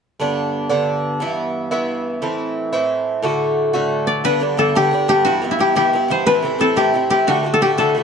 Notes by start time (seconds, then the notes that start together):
0.20 G2 D3 B3 D4
0.69 G2 D3 B3 D4
1.20 G2 E3 B3 E4
1.71 G2 E3 B3 E4
2.22 A2 E3 C4 E4
2.73 A2 E3 C4 E4
3.23 A2 D3 A3 F#4
3.73 A2 D3 A3 F#4
4.07 D5
4.24 G2 D3 B3 D4 B4
4.40 G2 D3 B3 D4
4.57 G2 D3 B3 D4 A4
4.75 G2 D3 B3 D4 G4
4.91 G2 D3 B3 D4
5.08 G2 D3 B3 D4 G4
5.25 G2 E3 B3 E4 F#4
5.42 G2 E3 B3 E4
5.51 E4
5.59 G2 E3 B3 E4 G4
5.75 G2 E3 B3 E4 G4
5.93 G2 E3 B3 E4
6.08 G2 E3 B3 E4 C5
6.26 A2 E3 C4 E4 B4
6.43 A2 E3 C4 E4
6.59 A2 E3 C4 E4 A4
6.76 A2 E3 C4 E4 G4
6.94 A2 E3 C4 E4
7.10 A2 E3 C4 E4 G4
7.27 A2 D3 A3 F#4
7.43 A2 D3 A3 F#4
7.54 A4
7.61 A2 D3 A3 F#4 G4
7.78 A2 D3 A3 F#4 A4
7.95 A2 D3 A3 F#4